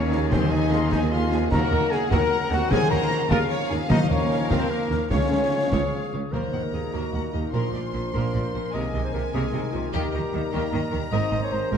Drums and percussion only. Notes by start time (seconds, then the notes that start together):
0.12 snare
0.33 concert bass drum, snare
0.73 snare
0.92 concert bass drum, snare
1.32 snare
1.52 concert bass drum, snare, crash
1.92 snare
2.11 concert bass drum, snare
2.51 snare
2.71 concert bass drum, snare
3.11 snare
3.31 concert bass drum, snare
3.71 snare
3.91 concert bass drum, snare
4.31 snare
4.51 concert bass drum, snare
4.91 snare
5.11 concert bass drum, snare
5.72 concert bass drum, snare